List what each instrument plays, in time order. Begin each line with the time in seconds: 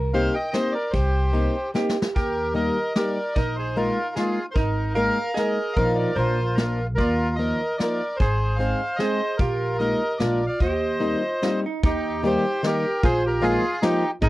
Already playing: upright bass C2, hollow-body jazz guitar A#4
0.14 steel-string acoustic guitar A#3 C4 D#4 G4, bandoneon C5 F5, ride
0.34 bandoneon D#5 G5
0.51 steel-string acoustic guitar A#3 C4 D#4 G4, bandoneon C5 D#5, snare, ride
0.72 bandoneon A#4 D5
0.91 upright bass C2, bandoneon G4 C5, kick, ride
1.33 steel-string acoustic guitar A#3 C4 D#4 G4, ride
1.74 steel-string acoustic guitar A#3 C4 D#4 G4, hollow-body jazz guitar G4, snare
1.89 snare
2.02 snare
2.14 upright bass D#2, bandoneon G4 A#4, hollow-body jazz guitar G4, kick, closed hi-hat
2.54 steel-string acoustic guitar G3 A#3 D#4 G4, bandoneon A#4 D#5, closed hi-hat
2.95 steel-string acoustic guitar G3 A#3 D#4 G4, bandoneon A#4 D5, snare, closed hi-hat
3.34 upright bass A#1, hollow-body jazz guitar D#4, bandoneon A#4 D#5, kick, closed hi-hat
3.56 bandoneon G#4 C5
3.76 steel-string acoustic guitar G#3 A#3 D#4 F4, bandoneon F4 A#4, closed hi-hat
4.15 steel-string acoustic guitar G#3 A#3 D#4 F4, bandoneon F4 G#4, snare, closed hi-hat
4.51 bandoneon A#4 C5, closed hi-hat
4.56 upright bass G#1, hollow-body jazz guitar D#4, bandoneon D#4, kick
4.95 steel-string acoustic guitar G#3 A#3 D#4 G#4, hollow-body jazz guitar A#4, bandoneon A#4 F5, closed hi-hat
5.34 steel-string acoustic guitar G#3 A#3 D#4 G#4, hollow-body jazz guitar G#4, bandoneon D#5, snare, closed hi-hat
5.39 bandoneon A#4
5.73 upright bass A#1, bandoneon A#4 F5, hollow-body jazz guitar A#4, kick, closed hi-hat
5.78 steel-string acoustic guitar F3 A#3 D#4 F4
5.95 bandoneon A#4 D5
6.15 upright bass A#1, steel-string acoustic guitar F3 A#3 D4 F4, bandoneon F4 C5, hollow-body jazz guitar A#4, closed hi-hat
6.55 steel-string acoustic guitar F3 A#3 D4 F4, bandoneon F4 A#4, snare, closed hi-hat
6.95 upright bass D#2, bandoneon F4 A#4, hollow-body jazz guitar D5, kick, closed hi-hat
7.36 steel-string acoustic guitar F3 A#3 D#4 F4, bandoneon A#4 D#5, closed hi-hat
7.78 steel-string acoustic guitar F3 A#3 D#4 F4, bandoneon A#4 D5, snare, closed hi-hat
8.16 upright bass G#1, bandoneon G#4 C5, kick, closed hi-hat
8.22 hollow-body jazz guitar C5
8.56 steel-string acoustic guitar G#3 C4 D#4 G#4, bandoneon C5 F5
8.60 closed hi-hat
8.96 steel-string acoustic guitar G#3 C4 D#4 G#4, hollow-body jazz guitar G#4, bandoneon C5 D#5, snare, closed hi-hat
9.37 upright bass A#1, bandoneon F4 A#4, hollow-body jazz guitar G4, kick, closed hi-hat
9.79 steel-string acoustic guitar G#3 A#3 D#4 F4, bandoneon A#4 D#5, closed hi-hat
10.17 upright bass A#1, steel-string acoustic guitar G#3 A#3 D4 F4, hollow-body jazz guitar F4, bandoneon A#4 D5, snare, closed hi-hat
10.46 bandoneon D5 F5
10.60 upright bass D#2, hollow-body jazz guitar G4, bandoneon C5 D#5, kick, closed hi-hat
11.00 steel-string acoustic guitar G3 A#3 C4 D#4, closed hi-hat
11.22 hollow-body jazz guitar F4
11.42 steel-string acoustic guitar G3 A#3 C4 D#4, hollow-body jazz guitar F4, snare, closed hi-hat
11.66 hollow-body jazz guitar D#4
11.83 upright bass D#2, hollow-body jazz guitar D#4, bandoneon D#4 G4, kick, closed hi-hat
12.23 steel-string acoustic guitar D#3 G3 A#3 D#4 G4, bandoneon G4, closed hi-hat
12.27 bandoneon C5
12.63 steel-string acoustic guitar D#3 G3 A#3 D#4 G4, bandoneon G4, snare, closed hi-hat
12.68 bandoneon A#4
13.03 upright bass A#1, hollow-body jazz guitar F4, bandoneon G#4 C5, kick, closed hi-hat
13.26 bandoneon G4 A#4
13.41 steel-string acoustic guitar F3 G#3 A#3 D#4 F4, bandoneon F4 G#4, closed hi-hat
13.82 steel-string acoustic guitar F3 G#3 A#3 D#4 F4, bandoneon D#4 G4, snare, closed hi-hat
14.22 upright bass G#1, bandoneon D#4 A#4, hollow-body jazz guitar G#4, kick, closed hi-hat